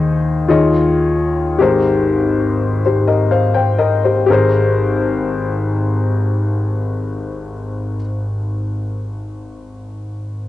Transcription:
Already playing: D#2 D#3 D#4 G#4 C5 D#5
0.48 D#2 D#3 F4 G#4 C#5 D#5
1.58 G#1 G#2 G4 G#4 A#4 C5
2.86 G4 C5
3.07 A#4 D#5
3.31 C5 F5
3.54 C5 G5
3.79 A#4 D#5
4.04 G4 C5
4.26 G#1 G4 G#4
4.31 A#4 C5

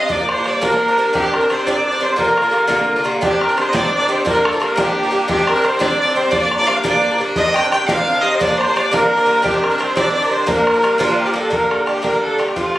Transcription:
Already playing: D#5
0.08 G2 F3 A#3 D4 D5, bodhran
0.19 F3 A#3 D4
0.29 C5, bodhran
0.36 F3 A#3 D4
0.43 G2 F3 A#3 D5, bodhran
0.47 D4 D5
0.61 G2 F3 A#3 D4 A#4, bodhran
0.72 F3 A#3 D4
0.88 F3 A#3 D4
0.97 G2 F3 A#3 D4
1.13 G2 D#3 C4 D4 G4, bodhran
1.22 D#3 C4 D4
1.33 A#4, bodhran
1.41 D#3 C4 D4
1.49 G2 D#3 C4 D4 C5, bodhran
1.65 G2 D#3 C4 D4 D5, bodhran
1.74 D#3 C4 D4
1.84 D5
1.91 D#3 C4 D4
2.00 G2 D#3 C4 D4 C5
2.16 G2 D3 A#3 F4 A#4, bodhran
2.21 F4 A#4
2.25 D3 A#3
2.38 bodhran
2.42 D3 A#3 F4
2.50 G2 D3 A#3 F4
2.54 bodhran
2.67 G2 D3 A#3 F4, bodhran
2.76 D3 A#3 F4
2.96 D3 A#3 F4
3.04 G2 D3 A#3 F4, bodhran
3.21 G2 D#3 C4 D4 G4, bodhran
3.26 G4
3.31 D#3 C4 D4
3.40 A#4, bodhran
3.49 D#3 C4 D4
3.57 G2 D#3 C4 D4 C5, bodhran
3.69 G2 D#3 C4 D#5
3.74 D4 D5, bodhran
3.83 D#3 C4 D4
3.94 D5
4.00 D#3 C4 D4
4.06 G2 D#3 C4 D4 D5
4.10 C5
4.25 G2 F3 A#3 D4 A#4, bodhran
4.33 F3 A#3 D4
4.44 A4, bodhran
4.52 F3 A#3 D4 A4
4.60 G2 F3 A#3 D4 A#4, bodhran
4.76 G2 F3 A#3 D4 G4, bodhran
4.85 F3 A#3 D4
5.03 F3 A#3 D4
5.11 G2 F3 A#3 D4
5.28 G2 D#3 C4 D4 G4, bodhran
5.37 D#3 C4 D4
5.47 A#4, bodhran
5.55 D#3 C4 D4
5.62 G2 D#3 C4 D4 C5, bodhran
5.66 C5
5.79 G2 D#3 C4 D4 D5, bodhran
5.88 D#3 C4 D4
5.98 D5
6.06 D#3 C4 D4
6.15 G2 D#3 C4 D4 C5
6.31 G2 F3 A#3 D4 D5, bodhran
6.40 F3 A#3 D4 D5
6.51 bodhran
6.56 A#3 D4 D5
6.61 F3
6.66 G2 F3 A#3 D4 F5, bodhran
6.83 G2 F3 A#3 D4 D5, bodhran
6.93 F3 A#3 D4
7.11 F3 A#3 D4
7.18 G2 F3 A#3 D4
7.36 G2 D#3 C4 D4 D#5, bodhran
7.44 D#3 C4 D4
7.55 G5, bodhran
7.62 D#3 C4 D4
7.72 G2 D#3 C4 D4 G5, bodhran
7.88 G2 D#3 C4 D4 F5, bodhran
7.97 D#3 C4 D4
8.02 F5
8.14 D#3 C4 D4 F5
8.21 G2 D#3 C4 D4 D#5
8.25 D#5
8.34 C5
8.39 G2 F3 A#3 D4 D5, bodhran
8.47 F3 A#3 D4
8.58 C5, bodhran
8.66 F3 A#3 D4
8.74 G2 F3 A#3 D4 D5, bodhran
8.91 G2 F3 A#3 D4 A#4, bodhran
9.00 F3 A#3 D4
9.17 F3 A#3 D4
9.26 G2 F3 A#3 D4
9.42 G2 D#3 C4 D4 G4, bodhran
9.51 D#3 C4 D4
9.62 A#4, bodhran
9.70 D#3 C4 D4
9.78 G2 D#3 C4 D4 C5, bodhran
9.96 G2 D#3 C4 D4 D5, bodhran
10.03 D#3 C4 D4
10.15 D5
10.22 D#3 C4 D4 A#4
10.29 G2 D#3 C4 D4 C5
10.33 C5
10.46 G2 F3 A#3 D4 A#4, bodhran
10.55 F3 A#3 D4
10.67 bodhran
10.74 F3 A#3 D4
10.82 G2 F3 A#3 D4, bodhran
10.98 G2 F3 A#3 D4 F4, bodhran
11.08 F3 A#3 D4
11.20 G4
11.26 F3 A#3 D4
11.33 G2 F3 A#3 D4 A4
11.50 G2 D3 A#3 D4 A#4, bodhran
11.70 A4, bodhran
11.86 G2 D3 A#3 D4 G4, bodhran
12.02 G2 D3 A#3 D4 A#4, bodhran
12.22 A4
12.38 G2 D3 A#3 D4 G4, bodhran
12.48 bodhran
12.56 C3 F3 A3 F4, bodhran
12.76 bodhran

